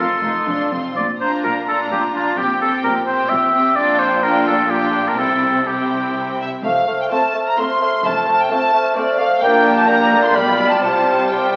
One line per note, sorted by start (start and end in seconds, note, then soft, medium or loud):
0.00 0.21 F4 soft
0.00 0.72 A4 soft
0.00 0.21 C6 soft
0.22 0.31 F1 soft
0.22 0.32 F2 soft
0.22 0.47 D#4 soft
0.22 0.45 F4 soft
0.22 0.47 C6 soft
0.47 0.56 F1 soft
0.47 0.56 F2 soft
0.47 0.72 D4 soft
0.47 0.70 F4 soft
0.47 0.70 C6 soft
0.71 0.80 F1 soft
0.71 0.80 F2 soft
0.71 0.96 C4 soft
0.71 0.96 F4 soft
0.71 0.96 C6 soft
0.96 1.37 A#1 soft
0.96 1.37 A#2 soft
0.96 1.07 D5 medium
1.20 1.66 D4 soft
1.20 1.66 F4 soft
1.20 1.32 C5 soft
1.20 1.68 A#5 soft
1.44 1.84 A#1 soft
1.44 1.84 A#2 soft
1.44 1.55 A#4 medium
1.67 2.13 D4 soft
1.67 2.14 F4 soft
1.67 1.79 A4 soft
1.67 2.15 A#5 soft
1.92 2.31 A#1 soft
1.92 2.31 A#2 soft
1.92 2.02 G4 soft
2.14 2.38 D4 soft
2.14 2.38 F4 soft
2.14 2.39 F4 soft
2.14 2.39 A#5 soft
2.37 2.78 A#1 soft
2.37 2.78 A#2 soft
2.37 2.60 C4 soft
2.37 2.61 G4 medium
2.37 2.60 G4 soft
2.37 2.61 G5 soft
2.61 3.07 C4 soft
2.61 3.06 G4 soft
2.61 2.72 A4 medium
2.61 3.07 G5 soft
2.84 3.23 A#1 soft
2.84 3.24 A#2 soft
2.84 2.95 A#4 medium
3.07 3.52 C4 soft
3.07 3.53 G4 soft
3.07 3.31 C5 medium
3.07 3.53 G5 soft
3.29 3.69 A#1 soft
3.29 3.69 A#2 medium
3.29 3.77 E5 medium
3.53 3.76 C4 soft
3.53 3.77 G4 soft
3.53 3.75 G5 soft
3.76 5.15 A#1 soft
3.76 5.15 A#2 soft
3.76 4.20 D4 soft
3.76 4.20 F4 soft
3.76 4.01 D5 medium
3.76 4.20 G5 soft
3.99 4.25 C5 medium
4.23 4.69 D4 soft
4.23 4.70 F4 soft
4.23 4.46 A#4 medium
4.23 4.69 G5 soft
4.47 4.72 A4 medium
4.70 5.18 D4 soft
4.70 5.19 F4 soft
4.70 5.09 G4 medium
4.70 5.17 G5 soft
5.08 5.20 A#4 medium
5.18 6.42 C2 soft
5.18 6.42 C3 soft
5.18 5.67 C4 soft
5.18 5.66 E4 soft
5.18 5.68 A4 medium
5.18 5.67 G5 soft
5.67 6.43 C4 soft
5.67 6.43 E4 soft
5.67 6.40 G4 soft
5.67 6.39 G5 soft
6.41 6.49 E5 soft
6.63 7.02 F1 soft
6.63 7.02 F2 soft
6.63 6.87 A3 soft
6.63 6.87 C5 soft
6.63 6.98 F5 soft
6.63 6.88 F6 soft
6.87 7.11 A3 soft
6.87 7.11 C5 soft
6.87 7.11 F6 soft
7.01 7.05 G5 soft
7.11 7.34 A3 soft
7.11 7.47 A3 soft
7.11 7.47 C4 soft
7.11 7.46 F4 soft
7.11 7.46 C5 soft
7.11 7.34 C5 soft
7.11 7.46 A5 medium
7.11 7.35 F6 soft
7.35 7.58 A3 soft
7.35 7.58 C5 soft
7.35 7.58 F6 soft
7.48 7.59 A#5 soft
7.58 7.81 A3 soft
7.58 7.93 A3 soft
7.58 7.93 C4 soft
7.58 7.93 F4 soft
7.58 7.81 C5 soft
7.58 7.93 C5 soft
7.58 8.05 C6 medium
7.58 7.82 F6 soft
7.82 8.04 A3 soft
7.82 8.04 C5 soft
7.82 8.04 F6 soft
8.04 8.41 F1 soft
8.04 8.41 F2 soft
8.04 8.27 A3 soft
8.04 8.27 C5 soft
8.04 8.39 A5 medium
8.04 8.27 F6 soft
8.27 8.50 A3 soft
8.27 8.50 C5 soft
8.27 8.51 F6 soft
8.41 8.51 G5 medium
8.51 8.73 A3 soft
8.51 8.85 A3 soft
8.51 8.85 C4 soft
8.51 8.84 F4 soft
8.51 8.85 C5 soft
8.51 8.73 C5 soft
8.51 8.96 A5 medium
8.51 8.73 F6 soft
8.73 8.95 A3 soft
8.73 8.96 C5 soft
8.73 8.96 F6 soft
8.96 9.19 A3 soft
8.96 9.30 A3 soft
8.96 9.31 C4 soft
8.96 9.31 F4 soft
8.96 9.19 C5 soft
8.96 9.31 C5 soft
8.96 9.19 D5 medium
8.96 9.19 F6 soft
9.19 9.42 A3 soft
9.19 9.43 C5 soft
9.19 9.42 F5 medium
9.19 9.42 F6 soft
9.42 10.31 A#1 soft
9.42 10.31 A#2 soft
9.42 9.85 A#3 soft
9.42 9.86 A#3 soft
9.42 9.86 D4 soft
9.42 9.85 G4 soft
9.42 9.85 A#4 soft
9.42 9.86 D5 soft
9.42 9.77 G5 medium
9.42 9.86 G6 soft
9.78 9.89 A5 medium
9.87 10.36 A#3 soft
9.87 10.11 A#3 soft
9.87 10.34 D4 soft
9.87 10.34 G4 soft
9.87 10.34 A#4 soft
9.87 10.34 D5 soft
9.87 10.22 A#5 medium
9.87 10.37 G6 soft
10.12 10.35 A3 soft
10.24 10.35 C6 medium
10.33 10.83 B1 soft
10.33 10.83 B2 soft
10.33 10.82 G3 soft
10.33 10.82 F4 soft
10.33 10.82 G4 soft
10.33 10.83 D5 soft
10.33 10.70 B5 medium
10.33 10.83 F6 soft
10.70 10.80 A5 medium
10.82 11.56 C2 soft
10.82 11.56 C3 soft
10.82 11.31 G3 soft
10.82 11.31 F4 soft
10.82 11.30 G4 soft
10.82 11.31 C5 soft
10.82 11.30 C5 soft
10.82 11.30 A5 medium
10.82 11.30 F6 soft
11.30 11.56 G3 soft
11.30 11.56 G4 soft
11.30 11.56 C5 soft
11.30 11.56 G5 medium
11.30 11.56 F6 soft